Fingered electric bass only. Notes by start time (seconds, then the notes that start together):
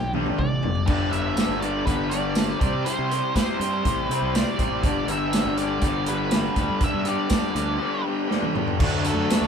Already playing: B1
0.38 A1
0.63 G1
0.87 G1
1.12 G1
1.49 G1
1.87 G1
2.61 C2
2.74 C3
2.99 C3
3.60 G2
3.86 A1
4.09 C3
4.21 C2
4.59 A1
4.71 A1
4.83 G1
5.07 G1
5.45 G1
5.81 G1
6.56 D2
6.69 G2
6.94 G2
7.55 D2
8.80 D2
9.16 F#2
9.41 D2